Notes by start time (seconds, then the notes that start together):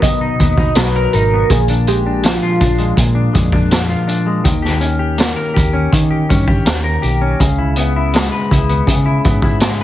Already playing: F#3 B3 D#4 A#4
0.02 B2 D#5, kick, closed hi-hat
0.21 D#4
0.40 D#2 B3, kick, closed hi-hat
0.58 D#4, kick
0.75 B1 F#3 B4, snare, closed hi-hat
0.96 A#4
1.13 G#1 D#4 A#4, closed hi-hat
1.34 B3
1.50 A#1 A#2 G#4, kick, closed hi-hat
1.68 D4, closed hi-hat
1.87 G#3 G4, closed hi-hat
2.06 D4
2.23 F3 F4, snare, closed hi-hat
2.43 F4
2.60 A#1 D4, kick, closed hi-hat
2.78 G#3, closed hi-hat
2.96 A#2, kick, closed hi-hat
3.15 D4
3.33 F2 G#3, kick, closed hi-hat
3.52 D4, kick
3.71 F3, snare, closed hi-hat
3.89 F4
4.08 D4, closed hi-hat
4.26 G#3
4.44 D#2 D#3, kick, closed hi-hat
4.62 G4, snare
4.80 C#4, closed hi-hat
4.99 G4
5.18 A#3, snare, closed hi-hat
5.36 A#4
5.54 D#2 G4, kick, closed hi-hat
5.73 C#4
5.92 D#3, kick, closed hi-hat
6.11 G4
6.29 G2 C#4, kick, closed hi-hat
6.47 G4, kick
6.65 D#2 A#3, snare, closed hi-hat
6.84 A#4
7.02 B1 G4, closed hi-hat
7.21 C#4
7.40 C#2 C#3, kick, closed hi-hat
7.59 E4
7.76 B3, closed hi-hat
7.96 E4
8.13 G#3, snare, closed hi-hat
8.32 B4
8.51 C#2 E4, kick, closed hi-hat
8.69 B3, closed hi-hat
8.87 C#3, kick, closed hi-hat
9.06 E4
9.24 G#2 B3, kick, closed hi-hat
9.42 E4, kick
9.60 G#3, snare, closed hi-hat